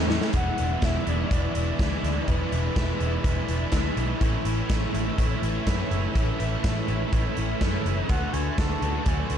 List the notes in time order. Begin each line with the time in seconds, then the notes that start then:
Already playing: E2 A2 E3 A3 C#4 E4 A4 C#5 G#5
0.08 A3 C#4 E4, snare
0.21 snare
0.32 E1 E2 B2 E3 G#3 D4 E4 B4 D5 F#5 G#5, kick, closed hi-hat
0.58 E1 E3 G#3 D4 E4, closed hi-hat
0.82 E1 E3 G#3 D4 E4 E5, kick, snare, closed hi-hat
1.06 E1 E3 G#3 D4 E4 D5, closed hi-hat
1.29 E1 E2 B2 E3 G#3 D4 E4, kick, closed hi-hat
1.54 E1 E3 G#3 D4 E4, closed hi-hat
1.78 D2 E3 G#3 D4 E4, kick, snare, closed hi-hat
2.01 D2 E3 G#3 D4 E4, snare, closed hi-hat
2.26 E1 E2 B2 E3 G#3 D4 E4 B4, kick, closed hi-hat
2.50 E1 E3 G#3 D4 E4, closed hi-hat
2.75 E1 E3 G#3 D4 E4, kick, snare, closed hi-hat
3.00 E1 E3 G#3 D4 E4, closed hi-hat
3.23 E1 E2 B2 E3 G#3 D4 E4, kick, closed hi-hat
3.48 E1 E3 G#3 D4 E4, closed hi-hat
3.72 D2 E3 G#3 D4, kick, snare, closed hi-hat
3.77 E4
3.96 B1 E3 G#3 D4 E4, closed hi-hat
4.20 A1 A2 E3 A3 C#4 E4 A4 C#5, kick, closed hi-hat
4.45 A1 A3 C#4 E4, closed hi-hat
4.70 A1 E3 A3 C#4 E4, kick, snare, closed hi-hat
4.94 A1 A3 C#4 E4, closed hi-hat
5.17 A1 A2 E3 A3 C#4 E4, kick, closed hi-hat
5.42 A1 A3 C#4 E4, closed hi-hat
5.66 F#2 E3 A3 C#4 E4, kick, snare, closed hi-hat
5.90 F#1 A3 C#4 E4, closed hi-hat
6.14 A1 A2 E3 A3 C#4 E4, kick, closed hi-hat
6.39 A1 A3 C#4 E4, closed hi-hat
6.63 A1 E3 A3 C#4 E4, kick, snare, closed hi-hat
6.88 A1 A3 C#4 E4, closed hi-hat
7.11 A1 A2 E3 A3 C#4 E4, kick, closed hi-hat
7.37 A1 A3 C#4 E4, closed hi-hat
7.61 F#2 E3 A3 C#4 E4, kick, snare, closed hi-hat
7.84 F#1 A3 C#4 E4, closed hi-hat
8.08 D2 D3 A3 D4 F#4 D5 F#5, kick, closed hi-hat
8.33 D2 A3 D4 F#4 G#5, closed hi-hat
8.58 D2 D3 A3 D4 F#4 A5, kick, snare, closed hi-hat
8.82 D2 A3 D4 F#4, closed hi-hat
9.05 D2 D3 A3 D4 F#4 G#5, kick, closed hi-hat
9.30 D2 A3 D4 F#4, closed hi-hat